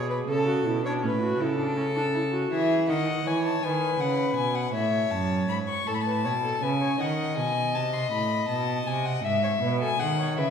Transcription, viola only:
0.00 0.30 G#4 medium
0.29 0.47 A4 medium
0.48 0.67 F#4 medium
0.65 0.84 E4 medium
0.84 1.05 D4 medium
1.03 1.21 C#4 medium
1.22 1.42 F#4 medium
1.40 1.58 E4 medium
1.59 1.76 D4 medium
1.77 1.85 C#4 medium
1.96 2.03 D4 medium
2.14 2.22 E4 medium
2.33 2.51 F#4 medium

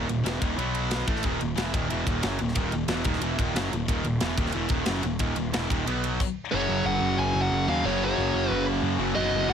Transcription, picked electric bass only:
0.08 0.23 D#1 medium
0.24 0.40 E1 loud
0.41 0.56 D#1 medium
0.56 1.03 B1 medium
1.08 1.23 A1 medium
1.24 1.39 D#1 medium
1.41 1.56 D#1 medium
1.57 1.72 E1 loud
1.73 1.89 D#1 medium
1.91 2.06 E1 medium
2.06 2.22 D#1 loud
2.23 2.39 F#1 medium
2.40 2.55 D#1 medium
2.56 2.71 D#1 medium
2.71 2.87 D#1 medium
2.88 3.04 E1 loud
3.06 3.21 D#1 medium
3.22 3.37 E1 medium
3.39 3.54 D#1 medium
3.55 3.70 F#1 medium
3.72 3.87 D#1 medium
3.88 4.04 D#1 loud
4.04 4.20 D#1 medium
4.21 4.37 E1 medium
4.37 4.53 D#1 medium
4.55 4.69 E1 medium
4.70 4.86 D#1 medium
4.86 5.02 F#1 medium
5.04 5.19 D#1 medium
5.20 5.36 D#1 medium
5.36 5.52 D#1 medium
5.55 5.69 E1 medium
5.70 5.86 D#1 medium
5.87 6.18 B1 medium
6.54 6.67 F#1 medium
6.69 6.83 F#1 medium
6.85 6.99 F#1 medium
7.01 7.16 F#1 medium
7.17 7.32 F#1 medium
7.34 7.49 F#1 medium
7.51 7.65 F#1 loud
7.68 7.82 D#2 medium
7.85 8.13 F#1 loud
8.18 8.32 F#1 medium
8.34 8.48 F#1 medium
8.51 8.79 F#1 medium
8.82 8.97 F#2 medium
8.98 9.13 F#1 medium
9.16 9.30 F#1 loud
9.33 9.47 F#1 loud
9.48 9.53 F#1 medium

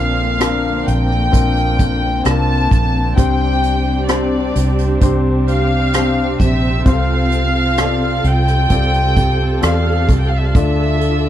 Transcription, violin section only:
0.00 0.86 F5 medium
0.87 2.25 G5 medium
2.24 3.17 A5 medium
3.16 4.05 G5 medium
4.09 5.01 D5 medium
5.49 6.37 F5 medium
6.41 6.83 E5 medium
6.87 8.25 F5 medium
8.27 9.64 G5 loud
9.65 10.16 F5 medium
10.20 10.28 G5 medium
10.29 10.38 F5 medium
10.37 10.46 E5 medium
10.46 10.55 F5 medium
10.55 11.29 E5 medium

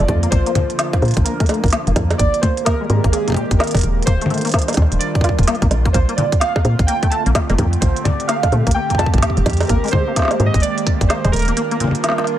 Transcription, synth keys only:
0.00 0.33 D5 medium
0.31 1.21 C5 loud
1.24 1.69 A#4 medium
2.18 2.40 D5 loud
2.41 2.66 C5 loud
2.65 3.14 A#4 loud
3.12 3.34 G#4 loud
3.35 3.60 G4 medium
3.59 4.03 A#4 medium
4.06 5.03 C5 loud
4.99 5.43 D5 medium
5.93 6.15 C5 medium
6.16 6.41 D5 medium
6.40 6.89 F5 loud
6.87 7.12 G5 loud
7.10 7.21 A5 loud
7.81 8.03 C5 medium
8.04 8.27 D5 medium
8.28 8.72 F5 loud
8.74 8.99 G5 loud
8.98 9.20 A5 loud
9.68 9.93 A#4 loud
9.91 10.48 C5 loud
10.46 10.61 D#5 loud
10.62 11.11 D5 loud
11.09 11.33 C5 loud
11.32 12.39 A#4 medium

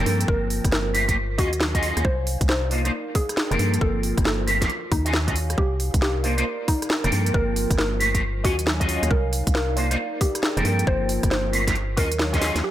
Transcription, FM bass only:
0.06 0.26 G2 medium
0.28 0.61 G1 loud
0.65 1.40 G1 loud
1.38 1.93 D#2 medium
1.97 2.03 D#2 medium
2.05 2.37 C2 loud
2.41 2.91 C2 loud
3.51 3.58 F1 loud
3.59 3.79 G2 medium
3.81 4.14 G1 loud
4.18 4.67 G1 loud
4.92 5.56 D#2 loud
5.58 5.90 C2 loud
5.94 6.44 C2 loud
7.05 7.11 F1 loud
7.12 7.32 G2 medium
7.34 7.67 G1 loud
7.71 8.46 G1 loud
8.45 8.99 D#2 medium
9.03 9.09 D#2 medium
9.11 9.43 C2 medium
9.47 9.97 C2 loud
10.57 10.64 F1 loud
10.65 10.84 G2 medium
10.87 11.20 G1 loud
11.23 11.99 G1 loud
11.97 12.52 D#2 medium
12.56 12.62 D#2 medium

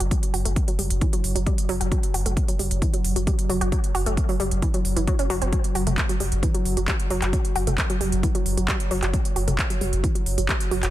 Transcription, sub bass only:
0.00 0.11 F#1 medium
0.34 0.45 F#1 loud
0.45 0.56 F#1 medium
0.79 0.90 F#1 loud
0.91 1.01 F#1 medium
1.24 1.35 F#1 loud
1.36 1.46 F#1 medium
1.69 1.80 F#1 loud
1.81 1.91 F#1 medium
2.14 2.25 F#1 loud
2.26 2.37 F#1 medium
2.59 2.70 F#1 loud
2.71 2.82 F#1 medium
3.04 3.15 F#1 loud
3.16 3.27 F#1 medium
3.50 3.61 F#1 loud
3.61 3.72 F#1 medium
3.95 4.06 F#1 loud
4.06 4.17 F#1 medium
4.40 4.51 F#1 loud
4.51 4.62 F#1 medium
4.85 4.96 F#1 loud
4.97 5.07 F#1 medium
5.30 5.41 F#1 loud
5.42 5.52 F#1 medium
5.75 5.86 F#1 loud
5.87 5.98 F#1 medium
6.20 6.31 F#1 loud
6.32 6.43 F#1 medium
6.65 6.76 F#1 loud
6.77 6.88 F#1 medium
7.11 7.22 F#1 loud
7.22 7.33 F#1 medium
7.56 7.67 F#1 loud
7.67 7.78 F#1 medium
8.01 8.12 F#1 medium
8.12 8.23 F#1 medium
8.46 8.57 F#1 loud
8.58 8.68 F#1 medium
8.91 9.02 F#1 loud
9.03 9.13 F#1 medium
9.36 9.47 F#1 loud
9.48 9.58 F#1 medium
9.81 9.92 F#1 medium
9.93 10.04 F#1 medium
10.26 10.37 F#1 loud
10.38 10.49 F#1 medium
10.71 10.82 F#1 loud
10.83 10.90 F#1 medium

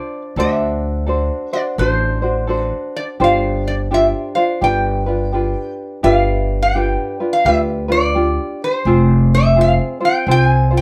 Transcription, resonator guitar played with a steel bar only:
0.00 0.21 D5 medium
0.40 1.53 E5 medium
1.53 1.60 D5 medium
1.79 2.58 C5 medium
2.58 2.96 B4 medium
2.96 3.03 D5 medium
3.24 3.68 F5 medium
3.68 3.74 D5 medium
3.94 4.06 E5 loud
4.35 4.62 F5 medium
4.64 5.74 G5 medium
6.04 6.62 F5 loud
6.62 7.33 G5 medium
7.33 7.45 F5 medium
7.46 7.58 E5 loud
7.92 8.63 D5 loud
8.64 9.34 C5 medium
9.35 9.60 E5 loud
9.61 9.72 F5 loud
10.05 10.30 G5 loud
10.31 10.42 G5 loud
10.42 10.75 G#5 loud
10.77 10.81 G5 loud

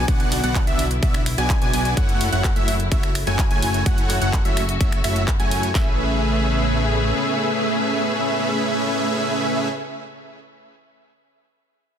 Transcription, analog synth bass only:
0.08 0.41 B1 loud
0.44 0.65 B1 loud
0.67 1.00 B1 loud
1.03 1.36 B1 medium
1.38 1.59 B1 loud
1.62 1.71 B1 medium
1.73 1.95 B1 loud
1.97 2.30 F#1 loud
2.33 2.54 F#1 loud
2.56 2.89 F#1 loud
2.92 3.25 F#1 loud
3.27 3.48 F#1 loud
3.51 3.60 F#1 loud
3.62 3.84 F#1 loud
3.86 4.19 F#1 loud
4.22 4.43 F#1 loud
4.45 4.78 F#1 loud
4.81 5.02 F#1 loud
5.04 5.37 F#1 loud
5.40 5.73 F#2 loud
5.75 7.13 A1 medium

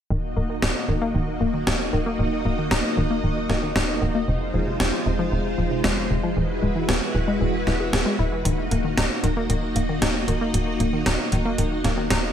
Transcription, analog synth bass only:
0.10 0.34 D#1 medium
0.37 0.61 D#1 medium
0.63 0.75 D#1 medium
0.88 1.13 D#1 loud
1.15 1.39 D#1 medium
1.41 1.65 D#1 medium
1.67 1.91 D#1 medium
1.93 2.17 D#1 medium
2.19 2.43 D#1 medium
2.45 2.69 D#1 medium
2.71 2.83 D#1 medium
2.97 3.21 D#1 loud
3.24 3.47 D#1 medium
3.50 3.73 D#1 medium
3.76 4.00 D#1 medium
4.02 4.26 D#1 medium
4.28 4.52 F1 medium
4.54 4.78 F1 medium
4.80 4.92 F1 medium
5.06 5.30 F1 loud
5.32 5.56 F1 medium
5.58 5.82 F1 medium
5.84 6.08 F1 medium
6.11 6.34 F1 medium
6.37 6.61 E1 loud
6.63 6.87 E1 medium
6.89 7.01 E1 medium
7.15 7.39 E1 loud
7.41 7.65 E1 medium
7.67 7.91 E1 medium
7.93 8.05 E1 medium
8.19 8.43 E1 loud
8.45 8.69 D#1 loud
8.71 8.95 D#1 medium
8.97 9.09 D#1 medium
9.23 9.47 D#1 loud
9.49 9.73 D#1 medium
9.76 10.00 D#1 medium
10.02 10.26 D#1 medium
10.28 10.52 D#1 medium
10.54 10.78 D#1 loud
10.80 11.04 D#1 medium
11.06 11.18 D#1 medium
11.32 11.56 D#1 loud
11.58 11.82 D#1 medium
11.84 12.08 D#1 medium
12.11 12.33 D#1 medium

